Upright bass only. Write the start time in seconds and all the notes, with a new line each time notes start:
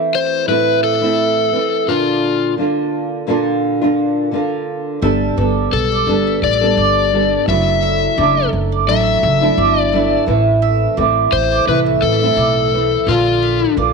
5.03 G1
5.38 G1
5.73 B1
6.07 G1
6.42 A1
6.77 G1
7.48 F#1
8.18 F#1
8.53 F#1
8.88 A1
9.23 F#1
9.57 G1
10.28 A1
10.98 A1
11.32 A1
11.67 C2
12.02 A1
12.37 B1
13.07 A#1
13.77 A#1